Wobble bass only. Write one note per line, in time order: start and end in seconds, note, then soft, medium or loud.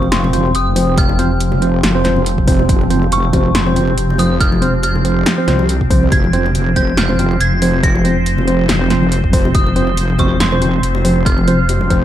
0.00 0.53 F1 loud
0.55 1.82 F1 loud
1.83 2.67 F1 loud
2.69 3.96 F1 loud
3.98 5.25 F1 loud
5.48 6.10 C2 loud
6.12 7.39 F1 loud
7.40 8.67 F1 loud
8.69 9.53 F1 loud
9.55 10.82 F1 loud
10.83 12.05 F1 loud